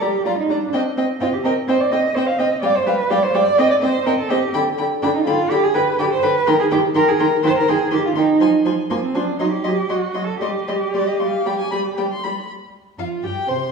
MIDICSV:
0, 0, Header, 1, 5, 480
1, 0, Start_track
1, 0, Tempo, 475059
1, 741, Time_signature, 4, 2, 24, 8
1, 3136, Tempo, 482703
1, 8416, Tempo, 494234
1, 9856, Tempo, 520833
1, 12256, Tempo, 490998
1, 13445, End_track
2, 0, Start_track
2, 0, Title_t, "Violin"
2, 0, Program_c, 0, 40
2, 11, Note_on_c, 0, 82, 51
2, 92, Note_off_c, 0, 82, 0
2, 258, Note_on_c, 0, 82, 56
2, 339, Note_off_c, 0, 82, 0
2, 503, Note_on_c, 0, 82, 53
2, 584, Note_off_c, 0, 82, 0
2, 739, Note_on_c, 0, 79, 60
2, 820, Note_off_c, 0, 79, 0
2, 986, Note_on_c, 0, 79, 50
2, 1067, Note_off_c, 0, 79, 0
2, 1217, Note_on_c, 0, 79, 57
2, 1298, Note_off_c, 0, 79, 0
2, 1465, Note_on_c, 0, 79, 57
2, 1546, Note_off_c, 0, 79, 0
2, 1703, Note_on_c, 0, 79, 62
2, 1784, Note_off_c, 0, 79, 0
2, 1945, Note_on_c, 0, 79, 56
2, 2026, Note_off_c, 0, 79, 0
2, 2192, Note_on_c, 0, 79, 61
2, 2273, Note_off_c, 0, 79, 0
2, 2420, Note_on_c, 0, 79, 60
2, 2501, Note_off_c, 0, 79, 0
2, 2652, Note_on_c, 0, 79, 62
2, 2733, Note_off_c, 0, 79, 0
2, 2897, Note_on_c, 0, 79, 55
2, 2978, Note_off_c, 0, 79, 0
2, 3143, Note_on_c, 0, 79, 65
2, 3223, Note_off_c, 0, 79, 0
2, 3381, Note_on_c, 0, 79, 61
2, 3461, Note_off_c, 0, 79, 0
2, 3629, Note_on_c, 0, 79, 70
2, 3709, Note_off_c, 0, 79, 0
2, 3866, Note_on_c, 0, 79, 61
2, 3946, Note_off_c, 0, 79, 0
2, 4094, Note_on_c, 0, 79, 65
2, 4174, Note_off_c, 0, 79, 0
2, 4325, Note_on_c, 0, 79, 59
2, 4405, Note_off_c, 0, 79, 0
2, 4568, Note_on_c, 0, 83, 70
2, 4647, Note_off_c, 0, 83, 0
2, 4804, Note_on_c, 0, 83, 59
2, 4883, Note_off_c, 0, 83, 0
2, 5056, Note_on_c, 0, 83, 70
2, 5136, Note_off_c, 0, 83, 0
2, 5288, Note_on_c, 0, 83, 64
2, 5368, Note_off_c, 0, 83, 0
2, 5530, Note_on_c, 0, 83, 64
2, 5609, Note_off_c, 0, 83, 0
2, 5774, Note_on_c, 0, 83, 57
2, 5854, Note_off_c, 0, 83, 0
2, 6016, Note_on_c, 0, 83, 60
2, 6096, Note_off_c, 0, 83, 0
2, 6243, Note_on_c, 0, 83, 61
2, 6323, Note_off_c, 0, 83, 0
2, 6483, Note_on_c, 0, 84, 68
2, 6563, Note_off_c, 0, 84, 0
2, 6726, Note_on_c, 0, 84, 56
2, 6805, Note_off_c, 0, 84, 0
2, 6956, Note_on_c, 0, 84, 67
2, 7036, Note_off_c, 0, 84, 0
2, 7201, Note_on_c, 0, 84, 60
2, 7280, Note_off_c, 0, 84, 0
2, 7441, Note_on_c, 0, 84, 63
2, 7520, Note_off_c, 0, 84, 0
2, 7683, Note_on_c, 0, 84, 56
2, 7763, Note_off_c, 0, 84, 0
2, 7914, Note_on_c, 0, 84, 56
2, 7994, Note_off_c, 0, 84, 0
2, 8157, Note_on_c, 0, 84, 56
2, 8237, Note_off_c, 0, 84, 0
2, 8404, Note_on_c, 0, 84, 58
2, 8482, Note_off_c, 0, 84, 0
2, 8651, Note_on_c, 0, 84, 49
2, 8728, Note_off_c, 0, 84, 0
2, 8890, Note_on_c, 0, 84, 57
2, 8968, Note_off_c, 0, 84, 0
2, 9135, Note_on_c, 0, 84, 56
2, 9212, Note_off_c, 0, 84, 0
2, 9368, Note_on_c, 0, 84, 57
2, 9445, Note_off_c, 0, 84, 0
2, 9609, Note_on_c, 0, 84, 50
2, 9687, Note_off_c, 0, 84, 0
2, 9852, Note_on_c, 0, 84, 50
2, 9926, Note_off_c, 0, 84, 0
2, 10081, Note_on_c, 0, 84, 48
2, 10155, Note_off_c, 0, 84, 0
2, 10333, Note_on_c, 0, 84, 52
2, 10406, Note_off_c, 0, 84, 0
2, 10580, Note_on_c, 0, 84, 44
2, 10654, Note_off_c, 0, 84, 0
2, 10818, Note_on_c, 0, 84, 46
2, 10892, Note_off_c, 0, 84, 0
2, 11055, Note_on_c, 0, 84, 47
2, 11129, Note_off_c, 0, 84, 0
2, 11299, Note_on_c, 0, 83, 54
2, 11372, Note_off_c, 0, 83, 0
2, 11531, Note_on_c, 0, 83, 48
2, 11605, Note_off_c, 0, 83, 0
2, 11773, Note_on_c, 0, 83, 47
2, 11847, Note_off_c, 0, 83, 0
2, 12016, Note_on_c, 0, 83, 47
2, 12090, Note_off_c, 0, 83, 0
2, 12738, Note_on_c, 0, 77, 58
2, 12816, Note_off_c, 0, 77, 0
2, 12974, Note_on_c, 0, 79, 54
2, 13212, Note_on_c, 0, 84, 64
2, 13227, Note_off_c, 0, 79, 0
2, 13445, Note_off_c, 0, 84, 0
2, 13445, End_track
3, 0, Start_track
3, 0, Title_t, "Violin"
3, 0, Program_c, 1, 40
3, 6, Note_on_c, 1, 74, 52
3, 87, Note_off_c, 1, 74, 0
3, 261, Note_on_c, 1, 74, 52
3, 342, Note_off_c, 1, 74, 0
3, 510, Note_on_c, 1, 74, 52
3, 591, Note_off_c, 1, 74, 0
3, 750, Note_on_c, 1, 75, 63
3, 830, Note_off_c, 1, 75, 0
3, 987, Note_on_c, 1, 75, 57
3, 1067, Note_off_c, 1, 75, 0
3, 1235, Note_on_c, 1, 75, 57
3, 1316, Note_off_c, 1, 75, 0
3, 1466, Note_on_c, 1, 75, 56
3, 1547, Note_off_c, 1, 75, 0
3, 1709, Note_on_c, 1, 75, 60
3, 1790, Note_off_c, 1, 75, 0
3, 1943, Note_on_c, 1, 75, 60
3, 2024, Note_off_c, 1, 75, 0
3, 2186, Note_on_c, 1, 75, 56
3, 2267, Note_off_c, 1, 75, 0
3, 2419, Note_on_c, 1, 75, 54
3, 2500, Note_off_c, 1, 75, 0
3, 2657, Note_on_c, 1, 77, 67
3, 2738, Note_off_c, 1, 77, 0
3, 2898, Note_on_c, 1, 77, 58
3, 2979, Note_off_c, 1, 77, 0
3, 3132, Note_on_c, 1, 77, 65
3, 3212, Note_off_c, 1, 77, 0
3, 3373, Note_on_c, 1, 77, 59
3, 3453, Note_off_c, 1, 77, 0
3, 3609, Note_on_c, 1, 75, 62
3, 3689, Note_off_c, 1, 75, 0
3, 3841, Note_on_c, 1, 75, 64
3, 3920, Note_off_c, 1, 75, 0
3, 4090, Note_on_c, 1, 75, 64
3, 4169, Note_off_c, 1, 75, 0
3, 4329, Note_on_c, 1, 75, 66
3, 4409, Note_off_c, 1, 75, 0
3, 4561, Note_on_c, 1, 79, 76
3, 4641, Note_off_c, 1, 79, 0
3, 4802, Note_on_c, 1, 79, 66
3, 4882, Note_off_c, 1, 79, 0
3, 5045, Note_on_c, 1, 79, 66
3, 5124, Note_off_c, 1, 79, 0
3, 5284, Note_on_c, 1, 79, 59
3, 5364, Note_off_c, 1, 79, 0
3, 5520, Note_on_c, 1, 79, 62
3, 5600, Note_off_c, 1, 79, 0
3, 5760, Note_on_c, 1, 79, 64
3, 5839, Note_off_c, 1, 79, 0
3, 6002, Note_on_c, 1, 79, 60
3, 6081, Note_off_c, 1, 79, 0
3, 6237, Note_on_c, 1, 79, 60
3, 6316, Note_off_c, 1, 79, 0
3, 6481, Note_on_c, 1, 79, 72
3, 6561, Note_off_c, 1, 79, 0
3, 6719, Note_on_c, 1, 79, 65
3, 6799, Note_off_c, 1, 79, 0
3, 6969, Note_on_c, 1, 79, 62
3, 7048, Note_off_c, 1, 79, 0
3, 7206, Note_on_c, 1, 79, 57
3, 7286, Note_off_c, 1, 79, 0
3, 7442, Note_on_c, 1, 79, 58
3, 7522, Note_off_c, 1, 79, 0
3, 7696, Note_on_c, 1, 79, 61
3, 7775, Note_off_c, 1, 79, 0
3, 7928, Note_on_c, 1, 79, 52
3, 8007, Note_off_c, 1, 79, 0
3, 8177, Note_on_c, 1, 79, 57
3, 8256, Note_off_c, 1, 79, 0
3, 8418, Note_on_c, 1, 80, 69
3, 8495, Note_off_c, 1, 80, 0
3, 8651, Note_on_c, 1, 80, 59
3, 8729, Note_off_c, 1, 80, 0
3, 8892, Note_on_c, 1, 80, 60
3, 8970, Note_off_c, 1, 80, 0
3, 9129, Note_on_c, 1, 80, 49
3, 9206, Note_off_c, 1, 80, 0
3, 9376, Note_on_c, 1, 75, 51
3, 9453, Note_off_c, 1, 75, 0
3, 9606, Note_on_c, 1, 75, 54
3, 9683, Note_off_c, 1, 75, 0
3, 9858, Note_on_c, 1, 75, 45
3, 9932, Note_off_c, 1, 75, 0
3, 10086, Note_on_c, 1, 75, 46
3, 10160, Note_off_c, 1, 75, 0
3, 10328, Note_on_c, 1, 75, 58
3, 10401, Note_off_c, 1, 75, 0
3, 10575, Note_on_c, 1, 75, 47
3, 10649, Note_off_c, 1, 75, 0
3, 10814, Note_on_c, 1, 74, 64
3, 10933, Note_on_c, 1, 75, 52
3, 10946, Note_off_c, 1, 74, 0
3, 11049, Note_off_c, 1, 75, 0
3, 11054, Note_on_c, 1, 77, 62
3, 11294, Note_on_c, 1, 79, 64
3, 11308, Note_off_c, 1, 77, 0
3, 11412, Note_off_c, 1, 79, 0
3, 11418, Note_on_c, 1, 80, 57
3, 11526, Note_off_c, 1, 80, 0
3, 11531, Note_on_c, 1, 83, 63
3, 11605, Note_off_c, 1, 83, 0
3, 11770, Note_on_c, 1, 79, 61
3, 11820, Note_off_c, 1, 79, 0
3, 11899, Note_on_c, 1, 84, 64
3, 12009, Note_on_c, 1, 83, 52
3, 12023, Note_off_c, 1, 84, 0
3, 12250, Note_off_c, 1, 83, 0
3, 12730, Note_on_c, 1, 65, 52
3, 12808, Note_off_c, 1, 65, 0
3, 12974, Note_on_c, 1, 67, 46
3, 13213, Note_on_c, 1, 72, 55
3, 13228, Note_off_c, 1, 67, 0
3, 13445, Note_off_c, 1, 72, 0
3, 13445, End_track
4, 0, Start_track
4, 0, Title_t, "Cello"
4, 0, Program_c, 2, 42
4, 21, Note_on_c, 2, 67, 77
4, 257, Note_off_c, 2, 67, 0
4, 264, Note_on_c, 2, 65, 81
4, 380, Note_off_c, 2, 65, 0
4, 388, Note_on_c, 2, 63, 75
4, 507, Note_on_c, 2, 62, 73
4, 522, Note_off_c, 2, 63, 0
4, 744, Note_off_c, 2, 62, 0
4, 1222, Note_on_c, 2, 65, 85
4, 1270, Note_off_c, 2, 65, 0
4, 1342, Note_on_c, 2, 67, 61
4, 1390, Note_off_c, 2, 67, 0
4, 1454, Note_on_c, 2, 70, 81
4, 1535, Note_off_c, 2, 70, 0
4, 1696, Note_on_c, 2, 72, 85
4, 1823, Note_on_c, 2, 74, 83
4, 1838, Note_off_c, 2, 72, 0
4, 1930, Note_on_c, 2, 75, 90
4, 1945, Note_off_c, 2, 74, 0
4, 2171, Note_on_c, 2, 72, 87
4, 2186, Note_off_c, 2, 75, 0
4, 2291, Note_on_c, 2, 77, 84
4, 2306, Note_off_c, 2, 72, 0
4, 2409, Note_on_c, 2, 75, 80
4, 2424, Note_off_c, 2, 77, 0
4, 2641, Note_off_c, 2, 75, 0
4, 2647, Note_on_c, 2, 74, 106
4, 2781, Note_on_c, 2, 72, 92
4, 2796, Note_off_c, 2, 74, 0
4, 2898, Note_on_c, 2, 71, 90
4, 2913, Note_off_c, 2, 72, 0
4, 3135, Note_on_c, 2, 74, 102
4, 3150, Note_off_c, 2, 71, 0
4, 3261, Note_on_c, 2, 72, 90
4, 3276, Note_off_c, 2, 74, 0
4, 3378, Note_on_c, 2, 74, 101
4, 3393, Note_off_c, 2, 72, 0
4, 3620, Note_on_c, 2, 75, 109
4, 3635, Note_off_c, 2, 74, 0
4, 3730, Note_off_c, 2, 75, 0
4, 3736, Note_on_c, 2, 74, 89
4, 3783, Note_off_c, 2, 74, 0
4, 3859, Note_on_c, 2, 72, 97
4, 4087, Note_off_c, 2, 72, 0
4, 4093, Note_on_c, 2, 70, 92
4, 4140, Note_off_c, 2, 70, 0
4, 4214, Note_on_c, 2, 69, 82
4, 4330, Note_on_c, 2, 67, 85
4, 4345, Note_off_c, 2, 69, 0
4, 4567, Note_off_c, 2, 67, 0
4, 5048, Note_on_c, 2, 62, 91
4, 5095, Note_off_c, 2, 62, 0
4, 5167, Note_on_c, 2, 63, 79
4, 5277, Note_off_c, 2, 63, 0
4, 5283, Note_on_c, 2, 65, 89
4, 5524, Note_on_c, 2, 67, 97
4, 5539, Note_off_c, 2, 65, 0
4, 5655, Note_on_c, 2, 68, 90
4, 5670, Note_off_c, 2, 67, 0
4, 5766, Note_on_c, 2, 71, 91
4, 5781, Note_off_c, 2, 68, 0
4, 6002, Note_off_c, 2, 71, 0
4, 6008, Note_on_c, 2, 67, 97
4, 6057, Note_off_c, 2, 67, 0
4, 6136, Note_on_c, 2, 72, 90
4, 6246, Note_on_c, 2, 71, 93
4, 6261, Note_off_c, 2, 72, 0
4, 6493, Note_on_c, 2, 70, 106
4, 6508, Note_off_c, 2, 71, 0
4, 6612, Note_off_c, 2, 70, 0
4, 6617, Note_on_c, 2, 68, 88
4, 6664, Note_off_c, 2, 68, 0
4, 6730, Note_on_c, 2, 67, 85
4, 6810, Note_off_c, 2, 67, 0
4, 6975, Note_on_c, 2, 70, 106
4, 7092, Note_on_c, 2, 68, 82
4, 7107, Note_off_c, 2, 70, 0
4, 7216, Note_on_c, 2, 70, 95
4, 7231, Note_off_c, 2, 68, 0
4, 7452, Note_off_c, 2, 70, 0
4, 7458, Note_on_c, 2, 72, 106
4, 7574, Note_off_c, 2, 72, 0
4, 7585, Note_on_c, 2, 70, 89
4, 7702, Note_on_c, 2, 68, 93
4, 7717, Note_off_c, 2, 70, 0
4, 7932, Note_off_c, 2, 68, 0
4, 7938, Note_on_c, 2, 67, 84
4, 8053, Note_off_c, 2, 67, 0
4, 8063, Note_on_c, 2, 65, 83
4, 8109, Note_off_c, 2, 65, 0
4, 8172, Note_on_c, 2, 63, 78
4, 8409, Note_off_c, 2, 63, 0
4, 8892, Note_on_c, 2, 58, 84
4, 8939, Note_off_c, 2, 58, 0
4, 9020, Note_on_c, 2, 60, 66
4, 9136, Note_on_c, 2, 62, 73
4, 9150, Note_off_c, 2, 60, 0
4, 9363, Note_off_c, 2, 62, 0
4, 9369, Note_on_c, 2, 63, 79
4, 9484, Note_off_c, 2, 63, 0
4, 9490, Note_on_c, 2, 67, 76
4, 9863, Note_on_c, 2, 66, 68
4, 9877, Note_off_c, 2, 67, 0
4, 10175, Note_on_c, 2, 69, 78
4, 10189, Note_off_c, 2, 66, 0
4, 10326, Note_off_c, 2, 69, 0
4, 10331, Note_on_c, 2, 67, 77
4, 11750, Note_off_c, 2, 67, 0
4, 12729, Note_on_c, 2, 41, 50
4, 12808, Note_off_c, 2, 41, 0
4, 12969, Note_on_c, 2, 43, 44
4, 13047, Note_off_c, 2, 43, 0
4, 13211, Note_on_c, 2, 48, 55
4, 13445, Note_off_c, 2, 48, 0
4, 13445, End_track
5, 0, Start_track
5, 0, Title_t, "Viola"
5, 0, Program_c, 3, 41
5, 17, Note_on_c, 3, 55, 58
5, 98, Note_off_c, 3, 55, 0
5, 256, Note_on_c, 3, 55, 57
5, 337, Note_off_c, 3, 55, 0
5, 500, Note_on_c, 3, 55, 57
5, 581, Note_off_c, 3, 55, 0
5, 740, Note_on_c, 3, 60, 64
5, 821, Note_off_c, 3, 60, 0
5, 980, Note_on_c, 3, 60, 60
5, 1061, Note_off_c, 3, 60, 0
5, 1218, Note_on_c, 3, 60, 62
5, 1299, Note_off_c, 3, 60, 0
5, 1459, Note_on_c, 3, 60, 62
5, 1540, Note_off_c, 3, 60, 0
5, 1695, Note_on_c, 3, 60, 74
5, 1776, Note_off_c, 3, 60, 0
5, 1935, Note_on_c, 3, 60, 66
5, 2016, Note_off_c, 3, 60, 0
5, 2176, Note_on_c, 3, 60, 64
5, 2257, Note_off_c, 3, 60, 0
5, 2415, Note_on_c, 3, 60, 63
5, 2496, Note_off_c, 3, 60, 0
5, 2647, Note_on_c, 3, 55, 67
5, 2727, Note_off_c, 3, 55, 0
5, 2893, Note_on_c, 3, 55, 65
5, 2974, Note_off_c, 3, 55, 0
5, 3133, Note_on_c, 3, 55, 73
5, 3212, Note_off_c, 3, 55, 0
5, 3373, Note_on_c, 3, 55, 72
5, 3452, Note_off_c, 3, 55, 0
5, 3608, Note_on_c, 3, 60, 76
5, 3687, Note_off_c, 3, 60, 0
5, 3851, Note_on_c, 3, 60, 64
5, 3931, Note_off_c, 3, 60, 0
5, 4087, Note_on_c, 3, 60, 73
5, 4167, Note_off_c, 3, 60, 0
5, 4331, Note_on_c, 3, 60, 71
5, 4411, Note_off_c, 3, 60, 0
5, 4575, Note_on_c, 3, 50, 71
5, 4654, Note_off_c, 3, 50, 0
5, 4816, Note_on_c, 3, 50, 67
5, 4895, Note_off_c, 3, 50, 0
5, 5051, Note_on_c, 3, 50, 71
5, 5131, Note_off_c, 3, 50, 0
5, 5292, Note_on_c, 3, 50, 75
5, 5372, Note_off_c, 3, 50, 0
5, 5530, Note_on_c, 3, 50, 74
5, 5609, Note_off_c, 3, 50, 0
5, 5762, Note_on_c, 3, 50, 68
5, 5842, Note_off_c, 3, 50, 0
5, 6007, Note_on_c, 3, 50, 72
5, 6086, Note_off_c, 3, 50, 0
5, 6250, Note_on_c, 3, 50, 61
5, 6329, Note_off_c, 3, 50, 0
5, 6487, Note_on_c, 3, 51, 72
5, 6566, Note_off_c, 3, 51, 0
5, 6728, Note_on_c, 3, 51, 67
5, 6807, Note_off_c, 3, 51, 0
5, 6965, Note_on_c, 3, 51, 67
5, 7044, Note_off_c, 3, 51, 0
5, 7212, Note_on_c, 3, 51, 68
5, 7292, Note_off_c, 3, 51, 0
5, 7450, Note_on_c, 3, 51, 73
5, 7530, Note_off_c, 3, 51, 0
5, 7693, Note_on_c, 3, 51, 65
5, 7772, Note_off_c, 3, 51, 0
5, 7925, Note_on_c, 3, 51, 68
5, 8005, Note_off_c, 3, 51, 0
5, 8171, Note_on_c, 3, 51, 56
5, 8250, Note_off_c, 3, 51, 0
5, 8409, Note_on_c, 3, 53, 65
5, 8486, Note_off_c, 3, 53, 0
5, 8651, Note_on_c, 3, 53, 63
5, 8729, Note_off_c, 3, 53, 0
5, 8891, Note_on_c, 3, 53, 58
5, 8969, Note_off_c, 3, 53, 0
5, 9129, Note_on_c, 3, 53, 55
5, 9206, Note_off_c, 3, 53, 0
5, 9368, Note_on_c, 3, 54, 61
5, 9446, Note_off_c, 3, 54, 0
5, 9613, Note_on_c, 3, 54, 57
5, 9691, Note_off_c, 3, 54, 0
5, 9850, Note_on_c, 3, 54, 55
5, 9924, Note_off_c, 3, 54, 0
5, 10089, Note_on_c, 3, 54, 50
5, 10162, Note_off_c, 3, 54, 0
5, 10332, Note_on_c, 3, 55, 55
5, 10406, Note_off_c, 3, 55, 0
5, 10579, Note_on_c, 3, 55, 51
5, 10652, Note_off_c, 3, 55, 0
5, 10821, Note_on_c, 3, 55, 56
5, 10895, Note_off_c, 3, 55, 0
5, 11063, Note_on_c, 3, 55, 52
5, 11137, Note_off_c, 3, 55, 0
5, 11297, Note_on_c, 3, 55, 58
5, 11371, Note_off_c, 3, 55, 0
5, 11534, Note_on_c, 3, 55, 50
5, 11608, Note_off_c, 3, 55, 0
5, 11777, Note_on_c, 3, 55, 53
5, 11850, Note_off_c, 3, 55, 0
5, 12019, Note_on_c, 3, 55, 46
5, 12093, Note_off_c, 3, 55, 0
5, 12734, Note_on_c, 3, 65, 50
5, 12971, Note_on_c, 3, 67, 44
5, 12986, Note_off_c, 3, 65, 0
5, 13203, Note_off_c, 3, 67, 0
5, 13209, Note_on_c, 3, 72, 54
5, 13287, Note_off_c, 3, 72, 0
5, 13445, End_track
0, 0, End_of_file